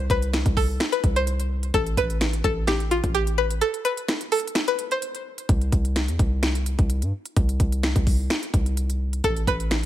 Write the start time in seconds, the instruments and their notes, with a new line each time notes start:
0.10 808-style bass C2, synth pluck B4, kick, closed hi-hat
0.22 closed hi-hat
0.33 finger snap, snare, closed hi-hat
0.46 808-style bass C2, kick, closed hi-hat
0.57 synth pluck A4, kick, open hi-hat
0.80 finger snap, snare, closed hi-hat
0.92 synth pluck B4, closed hi-hat
1.04 808-style bass C2, kick, closed hi-hat
1.16 synth pluck C5, closed hi-hat
1.27 closed hi-hat
1.40 closed hi-hat
1.63 closed hi-hat
1.74 808-style bass A1, synth pluck A4, kick, closed hi-hat
1.86 closed hi-hat
1.97 808-style bass A1, synth pluck B4, kick, closed hi-hat
2.10 closed hi-hat
2.21 finger snap, snare, closed hi-hat
2.33 closed hi-hat
2.44 808-style bass A1, synth pluck A4, kick, closed hi-hat
2.67 synth pluck G4, finger snap, snare, closed hi-hat
2.80 closed hi-hat
2.91 synth pluck F4, closed hi-hat
3.04 808-style bass A1, kick, closed hi-hat
3.15 synth pluck G4, closed hi-hat
3.27 closed hi-hat
3.38 synth pluck B4
3.50 closed hi-hat
3.61 synth pluck A4, closed hi-hat
3.74 closed hi-hat
3.85 synth pluck B4, closed hi-hat
3.97 closed hi-hat
4.08 finger snap, snare, closed hi-hat
4.21 closed hi-hat
4.32 synth pluck A4, closed hi-hat, open hi-hat
4.40 closed hi-hat
4.47 closed hi-hat
4.55 finger snap, snare, closed hi-hat
4.68 synth pluck B4, closed hi-hat
4.79 closed hi-hat
4.91 synth pluck C5, closed hi-hat
5.02 closed hi-hat
5.15 closed hi-hat
5.38 closed hi-hat
5.49 808-style bass C2, kick, closed hi-hat
5.61 closed hi-hat
5.72 808-style bass C2, kick, closed hi-hat
5.85 closed hi-hat
5.96 finger snap, snare, closed hi-hat
6.08 808-style bass E2, closed hi-hat
6.19 808-style bass C2, kick, closed hi-hat
6.43 finger snap, snare, closed hi-hat
6.55 closed hi-hat
6.66 closed hi-hat
6.79 808-style bass C2, kick, closed hi-hat
6.90 closed hi-hat
7.02 808-style bass G2, closed hi-hat
7.25 closed hi-hat
7.36 808-style bass C2, kick, closed hi-hat
7.49 closed hi-hat
7.60 808-style bass C2, kick, closed hi-hat
7.72 closed hi-hat
7.83 finger snap, snare, closed hi-hat
7.96 808-style bass C2, kick, closed hi-hat
8.07 kick, open hi-hat
8.30 finger snap, snare, closed hi-hat
8.43 closed hi-hat
8.54 808-style bass C2, kick, closed hi-hat
8.66 closed hi-hat
8.77 closed hi-hat
8.90 closed hi-hat
9.13 closed hi-hat
9.24 808-style bass A1, synth pluck A4, kick, closed hi-hat
9.37 closed hi-hat
9.47 808-style bass A1, synth pluck B4, kick, closed hi-hat
9.60 closed hi-hat
9.71 finger snap, snare, closed hi-hat